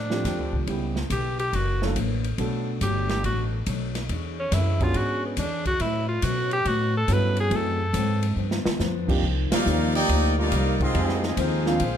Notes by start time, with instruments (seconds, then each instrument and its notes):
Already playing: upright bass A2, steel-string acoustic guitar F3 A3 D4 G4, tenor saxophone D4
0.10 grand piano F3 A3 C4 D4 G4, snare
0.24 upright bass F2, steel-string acoustic guitar F3 A3 D4 G4, kick, snare, hi-hat pedal, ride
0.39 upright bass D2
0.53 upright bass C2, kick
0.67 upright bass C#2, steel-string acoustic guitar C#3 B3 E4 G4, grand piano G3 B3 C#4 E4 G4, kick, ride
0.96 snare
1.10 upright bass B1, steel-string acoustic guitar C#3 B3 E4 G4, tenor saxophone G4, kick, hi-hat pedal, ride
1.39 tenor saxophone G4, ride
1.53 upright bass F#1, steel-string acoustic guitar F#2 E3 A#3 D4, tenor saxophone F#4, kick, ride
1.82 grand piano F#3 A#3 D4 E4 A4, snare
1.96 upright bass A1, steel-string acoustic guitar F#2 E3 A#3 D4, kick, hi-hat pedal, ride
2.24 ride
2.38 upright bass B1, steel-string acoustic guitar B2 F#3 A3 D4, grand piano A3 B3 D4 F#4 A4, kick, ride
2.81 upright bass G1, steel-string acoustic guitar B2 F#3 A3 D4, tenor saxophone G4, kick, hi-hat pedal, ride
3.09 tenor saxophone G4, snare, ride
3.24 upright bass A1, steel-string acoustic guitar B2 F#3 A3, tenor saxophone F#4, kick, ride
3.28 steel-string acoustic guitar D4
3.66 upright bass B1, steel-string acoustic guitar B2 F#3 A3 D4, kick, hi-hat pedal, ride
3.95 snare, ride
4.09 upright bass E2, steel-string acoustic guitar E3 D4 G#4 C#5, kick, ride
4.39 tenor saxophone C#4
4.52 upright bass F#2, steel-string acoustic guitar E3 D4 G#4 C#5, tenor saxophone E4, kick, snare, hi-hat pedal, ride
4.80 grand piano B3 C#4 D4 F#4 G#4, tenor saxophone F4, kick, ride
4.94 upright bass G#2, steel-string acoustic guitar E3 D4 G#4 C#5, tenor saxophone F#4, kick, ride
5.26 tenor saxophone B3
5.37 upright bass E2, steel-string acoustic guitar E3 D4 G#4 C#5, tenor saxophone D4, kick, hi-hat pedal, ride
5.66 tenor saxophone F#4, kick, ride
5.80 steel-string acoustic guitar A2 F#3 B3 C#4, upright bass A2, tenor saxophone E4, kick, ride
6.09 tenor saxophone F4
6.22 steel-string acoustic guitar A2 F#3 B3 C#4, upright bass B2, tenor saxophone F#4, kick, hi-hat pedal, ride
6.51 tenor saxophone G4, ride
6.65 steel-string acoustic guitar A2 F#3 B3 C#4, upright bass A2, tenor saxophone F#4, kick, ride
6.97 tenor saxophone A4
7.08 upright bass G2, steel-string acoustic guitar A2 F#3 B3 C#4, grand piano B3 C#4 E4 F#4 A4, kick, hi-hat pedal, ride
7.12 tenor saxophone B4
7.37 tenor saxophone G#4, ride
7.50 steel-string acoustic guitar F#2 E3 A3 C4, upright bass F#2, grand piano A3 C4 E4 F#4 G#4, kick, ride
7.56 tenor saxophone A4
7.93 steel-string acoustic guitar F#2 E3 A3 C4, upright bass G#2, kick, hi-hat pedal, ride
8.23 ride
8.36 steel-string acoustic guitar G2 F3 B3 D4, upright bass G2
8.51 snare
8.66 muted upright bass stroke, snare
8.79 upright bass F2, steel-string acoustic guitar G2 F3 B3 D4, snare, hi-hat pedal
9.07 grand piano C3 F3 A#3 D4 D#4 G4, kick, crash
9.22 upright bass C2, steel-string acoustic guitar C3 F3 A#3 D#4, kick
9.51 trombone section G3 A#3 F4, trumpet section D#4 A#4 D5 F5, muted upright bass stroke, snare, ride
9.64 upright bass D#2, steel-string acoustic guitar C3 F3 A#3, grand piano F3 A#3 D#4 G4 D5, hi-hat pedal
9.68 steel-string acoustic guitar D#4
9.95 trombone section A#3 D#4 G4, trumpet section D#4 A#4 D5 G5, ride
10.08 upright bass D2, steel-string acoustic guitar C3 F3 A#3 D#4, kick, ride
10.36 trombone section D#3 G3 A#3 D4 F4, trumpet section D#4 A#4 D5 F5
10.52 upright bass C2, steel-string acoustic guitar C3 F3 A#3 D#4, kick, hi-hat pedal, ride
10.80 trombone section D#3 G#3 C4 D#4 F4, trumpet section C4 F4 G#4 D#5, kick, ride
10.93 upright bass F2, grand piano F3 G#3 C4 D#4 G4, steel-string acoustic guitar F3 C4 D#4, kick, ride
10.98 steel-string acoustic guitar G#4
11.09 snare
11.23 trombone section G#3 C4 D#4, trumpet section C4 F4 G#4 D#5, snare
11.37 upright bass D#2, steel-string acoustic guitar F3 C4 D#4 G#4, trombone section G#3 C4 F4, trumpet section D#4 G#4 C5 F5, kick, hi-hat pedal, ride
11.66 grand piano F3 A#3 C4 D4 F4, snare
11.80 upright bass A#1, steel-string acoustic guitar A#2 G#3 C4 D4, kick, ride